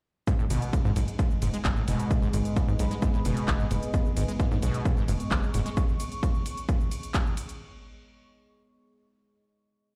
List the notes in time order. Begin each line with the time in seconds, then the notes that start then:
0.27 G#2 G#3 B3, kick, closed hi-hat, shaker
0.38 A2 G#4, shaker
0.50 G#1 B2, open hi-hat, ride, shaker
0.62 closed hi-hat, shaker
0.73 G#1, kick, closed hi-hat, shaker
0.85 G#2, shaker
0.96 B1 G#2, open hi-hat, ride, shaker
1.08 closed hi-hat, shaker
1.19 G#2, kick, closed hi-hat, shaker
1.31 D#5, shaker
1.42 F#1 G#2, open hi-hat, ride, shaker
1.54 G#3, closed hi-hat, shaker
1.65 G#1 G#2, kick, clap, closed hi-hat, shaker
1.77 A2, shaker
1.88 F#1 B2, open hi-hat, ride, shaker
1.94 B5
1.99 closed hi-hat, shaker
2.11 G#1, kick, closed hi-hat, shaker
2.22 G#2, shaker
2.33 G#1 G#2, open hi-hat, ride, shaker
2.45 closed hi-hat, shaker
2.56 G#2, kick, closed hi-hat, shaker
2.68 G#2, shaker
2.79 B1 G#2, open hi-hat, ride, shaker
2.91 G#3, closed hi-hat, shaker
3.02 G#2, kick, closed hi-hat, shaker
3.14 A2, shaker
3.25 F#1 B2, open hi-hat, ride, shaker
3.37 closed hi-hat, shaker
3.48 G#1, kick, clap, closed hi-hat, shaker
3.60 G#2, shaker
3.71 F#1 G#2, open hi-hat, ride, shaker
3.83 closed hi-hat, shaker
3.94 G#2, kick, closed hi-hat, shaker
4.06 shaker
4.17 G#1 G#2, open hi-hat, ride, shaker
4.28 G#3, closed hi-hat, shaker
4.40 G#2, kick, closed hi-hat, shaker
4.51 G#2 A2, shaker
4.62 B1 B2, open hi-hat, ride, shaker
4.67 C#6
4.74 closed hi-hat, shaker
4.85 G#1, kick, closed hi-hat, shaker
4.97 G#2, shaker
5.08 F#1 G#2, open hi-hat, ride, shaker
5.20 closed hi-hat, shaker
5.31 G#1 G#2, kick, clap, closed hi-hat, shaker
5.43 shaker
5.54 F#1 G#2, open hi-hat, ride, shaker
5.66 G#3, closed hi-hat, shaker
5.77 kick, closed hi-hat, shaker
5.89 shaker
6.00 open hi-hat, ride, shaker
6.12 closed hi-hat, shaker
6.23 kick, closed hi-hat, shaker
6.35 shaker
6.46 open hi-hat, ride, shaker
6.57 closed hi-hat, shaker
6.69 kick, closed hi-hat, shaker
6.80 shaker
6.91 open hi-hat, ride, shaker
7.03 closed hi-hat, shaker
7.14 kick, clap, closed hi-hat, shaker
7.26 shaker
7.37 open hi-hat, ride, shaker
7.49 closed hi-hat, shaker